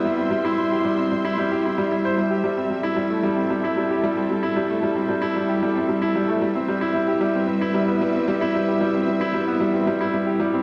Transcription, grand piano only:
X:1
M:4/4
L:1/16
Q:1/4=113
K:C
V:1 name="Grand piano"
G, C G, E G, G G, C G, E G, G E G, E c | G, G G, C G, E G, A, G, C G, E G, G G, C | G, E G, A, G, C G, E G, G G, C G, E G, A, | G, C G, E G, G G, C G, E G, B, G, C G, E |
G, G G, C G, E G, B, G, C G, E G, G G, C |]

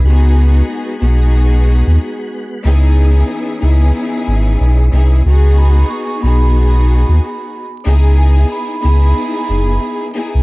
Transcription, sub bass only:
X:1
M:4/4
L:1/16
Q:"Swing 16ths" 1/4=92
K:C#m
V:1 name="Sub bass" clef=bass
C,,4 z2 B,,,4- B,,, D,, z4 | C,,4 z2 C,,2 z2 G,,,2 B,,,2 ^B,,,2 | C,,4 z2 B,,,4- B,,, D,, z4 | C,,4 z2 C,,2 z2 F,,,2 z3 ^B,,, |]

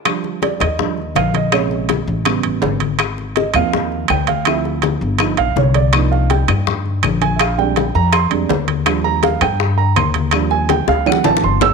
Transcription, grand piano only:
X:1
M:4/4
L:1/8
Q:1/4=164
K:Eb
V:1 name="Grand piano"
z2 d e3 f e | _d2 z6 | z2 e f3 g f | =e2 z3 f _d =d- |
d f g z4 a | [_f=f] g2 b c' z3 | z b f g2 b c' z | z a g f ^f =a c' _f' |]
V:2 name="Grand piano" clef=bass
[F,G,D]3 z [F,G,D] z3 | [C,_D,A,]4 [^C,G,=B,]3 z | z3 [F,B,C]3 z2 | [F,C=E]4 [F,=B,^D] z3 |
[F,B,DE]8 | z [G,A,CD] z3 [G,A,CD] z2 | [F,G,D]3 z4 z | [F,G,D]4 [_F,^F,C]3 z |]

